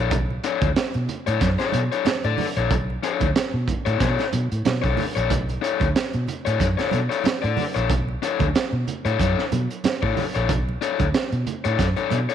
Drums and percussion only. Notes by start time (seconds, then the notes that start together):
0.11 kick, closed hi-hat, muted conga, low conga
0.31 muted conga
0.44 closed hi-hat
0.61 kick, closed hi-hat, high conga
0.76 snare, closed hi-hat, muted conga
0.94 closed hi-hat, muted conga
1.08 closed hi-hat, low conga
1.27 closed hi-hat
1.41 kick, snare, closed hi-hat, muted conga, high conga
1.58 snare, closed hi-hat, muted conga
1.72 closed hi-hat, high conga
1.92 closed hi-hat
2.05 snare, closed hi-hat, high conga
2.24 closed hi-hat, muted conga
2.38 open hi-hat, high conga, low conga
2.57 closed hi-hat
2.71 kick, closed hi-hat, muted conga, low conga
2.90 muted conga
3.03 closed hi-hat
3.20 kick, closed hi-hat, high conga
3.36 snare, closed hi-hat
3.68 kick, closed hi-hat, low conga
3.86 closed hi-hat
4.00 kick, snare, closed hi-hat, high conga
4.19 snare, closed hi-hat
4.33 closed hi-hat, high conga
4.52 closed hi-hat
4.65 snare, closed hi-hat, muted conga, high conga
4.84 kick, closed hi-hat
4.97 open hi-hat, high conga, low conga
5.17 closed hi-hat
5.30 kick, closed hi-hat, muted conga, low conga
5.49 closed hi-hat, muted conga
5.64 closed hi-hat
5.80 kick, closed hi-hat, high conga
5.96 snare, closed hi-hat
6.13 closed hi-hat, muted conga
6.28 closed hi-hat, low conga
6.46 closed hi-hat
6.60 kick, closed hi-hat, high conga
6.79 snare, closed hi-hat
6.91 closed hi-hat, high conga
7.11 closed hi-hat
7.24 snare, closed hi-hat, muted conga, high conga
7.42 closed hi-hat, muted conga
7.57 open hi-hat, high conga, low conga
7.76 closed hi-hat
7.89 kick, closed hi-hat, low conga
8.09 muted conga
8.23 closed hi-hat
8.39 kick, closed hi-hat, high conga
8.55 snare, closed hi-hat
8.73 muted conga
8.87 closed hi-hat, low conga
9.05 closed hi-hat
9.20 kick, closed hi-hat, muted conga, high conga
9.39 snare
9.52 closed hi-hat, high conga
9.71 closed hi-hat
9.84 snare, closed hi-hat, muted conga, high conga
10.03 kick, muted conga
10.17 open hi-hat, high conga, low conga
10.35 closed hi-hat
10.49 kick, closed hi-hat, low conga
10.69 muted conga
10.82 closed hi-hat
10.99 kick, closed hi-hat, high conga
11.14 snare, closed hi-hat
11.32 closed hi-hat, muted conga
11.47 closed hi-hat, low conga
11.65 closed hi-hat
11.79 kick, snare, closed hi-hat, high conga
11.96 closed hi-hat, muted conga
12.10 closed hi-hat, high conga
12.29 closed hi-hat